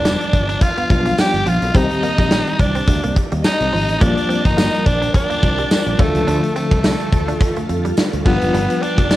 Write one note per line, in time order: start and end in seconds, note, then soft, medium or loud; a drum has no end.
0.00 0.14 F1 loud
0.00 0.86 F3 medium
0.00 0.86 G3 medium
0.00 0.87 B3 medium
0.00 0.63 D4 loud
0.00 0.87 D4 medium
0.00 0.87 F4 medium
0.00 0.62 D5 medium
0.05 0.17 G3 medium
0.05 snare loud
0.05 tambourine medium
0.21 muted clean electric guitar stroke soft
0.21 closed hi-hat soft
0.33 0.55 G1 medium
0.33 kick medium
0.33 closed hi-hat medium
0.49 0.59 D4 medium
0.49 closed hi-hat medium
0.61 0.90 F4 loud
0.61 0.89 F5 loud
0.61 kick loud
0.61 closed hi-hat loud
0.77 0.87 B3 medium
0.77 closed hi-hat medium
0.90 1.11 B1 loud
0.90 1.75 F3 medium
0.90 1.73 G3 soft
0.90 1.75 B3 soft
0.90 1.75 D4 soft
0.90 1.75 F4 medium
0.90 1.21 F4 loud
0.90 1.16 F5 medium
0.90 muted clean electric guitar stroke soft
0.90 kick loud
0.90 closed hi-hat medium
1.05 1.15 G3 medium
1.05 closed hi-hat medium
1.18 1.49 G4 loud
1.18 1.47 G5 loud
1.18 snare loud
1.18 tambourine medium
1.33 1.43 G1 medium
1.33 closed hi-hat soft
1.46 1.58 A#1 medium
1.46 1.58 F3 medium
1.46 1.78 F4 loud
1.46 1.75 F5 medium
1.46 closed hi-hat medium
1.62 1.71 B1 loud
1.62 closed hi-hat medium
1.74 1.86 C2 loud
1.74 3.97 D#3 medium
1.74 3.97 G3 medium
1.74 1.87 C4 medium
1.74 3.97 C4 medium
1.74 2.62 D#4 loud
1.74 3.98 G4 medium
1.74 2.60 D#5 loud
1.74 kick loud
1.74 closed hi-hat medium
1.90 muted clean electric guitar stroke soft
1.90 closed hi-hat medium
2.03 2.15 A#3 medium
2.03 closed hi-hat medium
2.18 2.40 A#1 loud
2.18 kick medium
2.18 closed hi-hat medium
2.31 2.44 G3 medium
2.31 snare loud
2.31 tambourine medium
2.47 muted clean electric guitar stroke soft
2.47 closed hi-hat soft
2.59 2.81 C2 medium
2.59 3.18 D4 medium
2.59 3.18 D5 medium
2.59 kick medium
2.59 closed hi-hat medium
2.75 2.85 C4 medium
2.75 closed hi-hat medium
2.88 2.99 D2 loud
2.88 kick loud
2.88 closed hi-hat medium
3.03 3.13 C2 medium
3.03 3.13 A#3 medium
3.03 closed hi-hat medium
3.16 muted clean electric guitar stroke soft
3.16 kick medium
3.16 closed hi-hat medium
3.32 3.42 D#2 medium
3.32 3.42 G3 medium
3.32 closed hi-hat medium
3.44 4.03 D#4 loud
3.44 3.97 D#5 loud
3.44 snare loud
3.44 tambourine medium
3.60 3.70 C2 medium
3.60 closed hi-hat medium
3.73 3.85 G#1 medium
3.73 3.85 F3 medium
3.73 open hi-hat medium
3.89 3.98 A1 loud
3.89 closed hi-hat medium
4.00 4.13 A#1 loud
4.00 5.95 F3 medium
4.00 5.95 G3 medium
4.00 5.95 A#3 medium
4.00 4.13 A#3 medium
4.00 4.08 C#4 medium
4.00 4.47 D4 loud
4.00 9.16 F4 medium
4.00 5.96 F4 medium
4.00 5.97 A#4 medium
4.00 4.45 D5 loud
4.00 9.16 F5 medium
4.00 5.97 G5 loud
4.00 kick loud
4.00 closed hi-hat medium
4.16 muted clean electric guitar stroke soft
4.16 closed hi-hat medium
4.29 4.41 C4 medium
4.29 closed hi-hat medium
4.44 4.66 G1 medium
4.44 4.88 D#4 loud
4.44 4.86 D#5 medium
4.44 kick medium
4.44 closed hi-hat medium
4.57 4.69 A#3 medium
4.57 snare loud
4.57 tambourine medium
4.73 muted clean electric guitar stroke soft
4.73 closed hi-hat soft
4.85 5.07 A#1 medium
4.85 5.14 D4 loud
4.85 5.12 D5 medium
4.85 kick medium
4.85 closed hi-hat medium
5.02 5.11 D4 medium
5.02 closed hi-hat medium
5.13 6.01 D4 loud
5.13 5.95 D5 loud
5.13 kick loud
5.13 closed hi-hat medium
5.30 5.39 A#3 medium
5.30 closed hi-hat medium
5.43 5.64 C2 medium
5.43 muted clean electric guitar stroke soft
5.43 kick medium
5.43 closed hi-hat medium
5.58 5.68 G3 medium
5.58 closed hi-hat medium
5.71 snare loud
5.71 tambourine medium
5.86 5.96 A#1 loud
5.86 closed hi-hat medium
5.98 6.11 D2 loud
5.98 8.21 D3 medium
5.98 8.21 F3 medium
5.98 6.11 F3 medium
5.98 8.22 A3 medium
5.98 6.55 A3 loud
5.98 8.22 D4 medium
5.98 8.22 F4 medium
5.98 6.54 A4 medium
5.98 8.23 A4 medium
5.98 8.23 A5 loud
5.98 kick loud
5.98 closed hi-hat medium
6.15 6.24 C#2 medium
6.15 closed hi-hat medium
6.27 6.39 D2 loud
6.27 6.39 D4 loud
6.27 closed hi-hat medium
6.43 muted clean electric guitar stroke soft
6.43 closed hi-hat medium
6.55 7.95 A3 medium
6.55 6.68 C4 medium
6.55 7.94 A4 medium
6.55 closed hi-hat medium
6.71 6.93 C2 medium
6.71 kick medium
6.71 closed hi-hat medium
6.84 6.96 A3 medium
6.84 snare loud
6.84 tambourine medium
7.00 muted clean electric guitar stroke soft
7.00 closed hi-hat soft
7.13 7.34 D2 medium
7.13 kick medium
7.13 closed hi-hat medium
7.28 7.38 D4 medium
7.28 closed hi-hat medium
7.41 kick loud
7.41 closed hi-hat medium
7.56 7.66 A3 medium
7.56 closed hi-hat medium
7.69 7.90 F2 medium
7.69 muted clean electric guitar stroke soft
7.69 closed hi-hat medium
7.85 7.94 G3 medium
7.85 closed hi-hat medium
7.97 snare loud
7.97 tambourine medium
8.13 8.23 D2 loud
8.13 closed hi-hat medium
8.25 8.37 G1 loud
8.25 9.16 F3 medium
8.25 8.38 F3 medium
8.25 9.16 G3 medium
8.25 9.16 B3 medium
8.25 8.84 B3 loud
8.25 9.16 D4 medium
8.25 9.16 F4 medium
8.25 8.78 B4 medium
8.25 9.16 B4 medium
8.25 9.16 G5 medium
8.25 kick loud
8.25 crash medium
8.41 8.51 F#1 medium
8.41 closed hi-hat medium
8.54 8.66 G1 loud
8.54 8.66 G3 loud
8.54 closed hi-hat medium
8.70 muted clean electric guitar stroke soft
8.70 closed hi-hat medium
8.82 8.94 B3 medium
8.82 9.16 D4 loud
8.82 9.16 D5 loud
8.82 closed hi-hat medium
8.98 9.16 F1 loud
8.98 kick medium
8.98 closed hi-hat medium
9.11 9.16 G3 medium
9.11 snare loud
9.11 tambourine medium